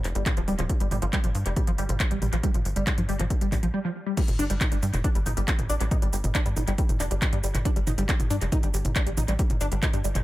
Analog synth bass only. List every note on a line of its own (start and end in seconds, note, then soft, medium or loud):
0.04 0.14 F1 loud
0.15 0.24 G1 medium
0.37 0.46 D1 medium
0.48 0.57 D1 medium
0.59 0.68 D1 medium
0.81 0.90 G1 loud
0.91 1.00 G1 loud
1.02 1.11 G1 medium
1.24 1.33 G1 medium
1.35 1.44 G2 loud
1.46 1.55 F1 medium
1.68 1.77 G1 medium
1.78 1.88 G1 medium
1.89 1.98 G1 medium
2.11 2.20 A1 medium
2.22 2.31 A1 medium
2.33 2.42 A1 medium
2.54 2.64 G1 medium
2.65 2.74 G1 loud
2.76 2.85 G1 medium
2.98 3.07 G2 medium
3.09 3.18 G1 loud
3.20 3.29 G1 medium
3.41 3.50 G1 medium
3.52 3.61 A1 loud
3.63 3.72 A#1 medium
4.28 4.37 G1 medium
4.39 4.48 G1 loud
4.50 4.59 G1 medium
4.72 4.81 G1 loud
4.82 4.92 G2 loud
4.93 5.03 F1 medium
5.15 5.24 G1 medium
5.26 5.35 G1 medium
5.37 5.46 G1 medium
5.59 5.68 A1 medium
5.70 5.79 A1 medium
5.80 5.90 A1 medium
6.02 6.11 G1 medium
6.13 6.22 G1 loud
6.24 6.33 G1 medium
6.46 6.55 G2 loud
6.57 6.66 G1 loud
6.68 6.77 G1 medium
6.89 6.98 G1 medium
7.00 7.09 F1 loud
7.11 7.20 G1 medium
7.33 7.42 G2 medium
7.44 7.53 G1 medium
7.54 7.64 G1 medium
7.76 7.85 G1 loud
7.87 7.96 G1 loud
7.98 8.07 G1 medium
8.20 8.29 G1 medium
8.30 8.40 G2 loud
8.41 8.50 F1 medium
8.63 8.72 G1 medium
8.74 8.83 G1 loud
8.85 8.94 G1 medium
9.06 9.16 A1 medium
9.17 9.26 A1 loud
9.28 9.37 A1 medium
9.50 9.59 G1 loud
9.61 9.70 G1 loud
9.72 9.81 G1 medium
9.93 10.03 G2 medium
10.04 10.13 G1 loud
10.15 10.24 G1 medium